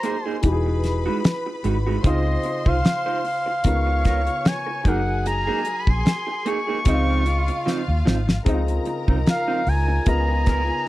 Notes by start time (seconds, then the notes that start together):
Already playing: F#3 D#4 G#4 A#4 C5 A#5 C6
0.03 A#3 D#4 G#4, closed hi-hat
0.26 A#3 D#4 G#4 G#5
0.42 E1 E3 D#4 F#4 G4 B4 B5, muted clean electric guitar stroke, kick, closed hi-hat
0.52 G#4
0.66 muted clean electric guitar stroke
0.84 snare, closed hi-hat
1.06 G#3 D#4 F#4
1.24 muted clean electric guitar stroke, snare, closed hi-hat
1.46 muted clean electric guitar stroke
1.64 G#1 G#3 D#4 F#4, closed hi-hat
1.86 G#3 D#4 F#4
2.02 C#2 C#3 C4 D#4 F4 C5 D#5 C6, kick, closed hi-hat
2.27 muted clean electric guitar stroke
2.43 muted clean electric guitar stroke, closed hi-hat
2.66 C2 D#4 F4 C5 F5, kick
2.85 muted clean electric guitar stroke, snare, closed hi-hat
3.06 D#4 F4 C5
3.24 F5, muted clean electric guitar stroke, open hi-hat
3.46 muted clean electric guitar stroke
3.64 C#2 C#3 B3 D#4 F4 A#4 C#5 C#6, muted clean electric guitar stroke, kick, closed hi-hat
3.87 muted clean electric guitar stroke
4.05 B3 F4 A#4, kick, snare, closed hi-hat
4.27 muted clean electric guitar stroke, closed hi-hat
4.45 G#5, muted clean electric guitar stroke, snare, closed hi-hat
4.67 muted clean electric guitar stroke
4.84 F#1 F#3 A#3 D#4 G#4 A#4 F#5 G#5, kick, closed hi-hat
5.07 muted clean electric guitar stroke
5.26 A#5, muted clean electric guitar stroke, closed hi-hat
5.47 A#3 D#4 G#4
5.65 muted clean electric guitar stroke, closed hi-hat
5.79 B5
5.87 A#1 C6, muted clean electric guitar stroke, kick
6.06 muted clean electric guitar stroke, snare, closed hi-hat
6.27 muted clean electric guitar stroke
6.46 A#3 D#4 G#4 C#6, closed hi-hat
6.67 A#3 D#4 G#4
6.85 C#2 C#3 F3 C4 D#4 F4 D#5 F5, kick, closed hi-hat
6.93 F4
7.26 muted clean electric guitar stroke, closed hi-hat
7.48 muted clean electric guitar stroke, closed hi-hat
7.66 F3 C4 D#4, snare
7.88 D#2, muted clean electric guitar stroke
8.05 G#1 F3 C4 D#4, snare
8.28 muted clean electric guitar stroke, snare
8.45 C#2 C#3 F3 C4 D#4 F4 A#4 D#5 A#5, kick, closed hi-hat
8.54 F4
8.68 muted clean electric guitar stroke, closed hi-hat
8.85 muted clean electric guitar stroke, closed hi-hat
9.08 C2 F3 C4 D#4, kick
9.26 F5, muted clean electric guitar stroke, snare, closed hi-hat
9.48 F3 C4 D#4
9.66 C#2 G#5, muted clean electric guitar stroke, open hi-hat
9.88 muted clean electric guitar stroke
10.06 C#2 C#3 B3 D#4 F4 G#4 A#4 D#5 G#5 A#5, muted clean electric guitar stroke, kick, closed hi-hat
10.28 muted clean electric guitar stroke
10.46 B3 F4 A#4, kick, snare, closed hi-hat
10.68 muted clean electric guitar stroke